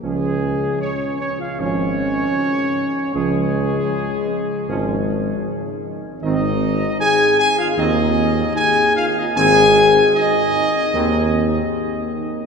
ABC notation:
X:1
M:4/4
L:1/16
Q:1/4=77
K:Ablyd
V:1 name="Trumpet section"
A4 _d2 d f d8 | A12- A2 z2 | e4 a2 a f e4 a2 f e | a4 e8- e2 z2 |]
V:2 name="French horn section"
A,4 _D2 D F D8 | A,12- A,2 z2 | E4 A2 A F E4 A2 F E | A4 E8- E2 z2 |]
V:3 name="Trombone section" clef=bass
[F,_D]2 z6 [F,D]2 z6 | [F,_D]2 z6 [F,D]2 z6 | [E,C]2 z6 [E,C]2 z6 | [E,C]2 z6 [E,C]2 z6 |]
V:4 name="Tuba" clef=bass
_D,,4 z4 A,,,4 z4 | _D,,4 z4 A,,,4 z4 | A,,,4 z4 E,,4 z4 | A,,,4 z4 E,,4 z4 |]